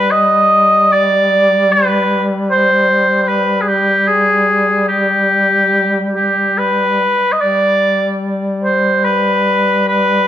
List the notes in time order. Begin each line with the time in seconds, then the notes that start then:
Already playing: G3 B4
0.11 D#5
0.93 D5
1.72 B4
2.51 C5
3.22 C5
3.28 B4
3.61 G#4
3.68 G4
4.07 G#4
4.88 G4
6.15 G4
6.58 B4
7.32 D#5
7.38 G3 D5
8.64 C5
9.04 B4
9.88 B4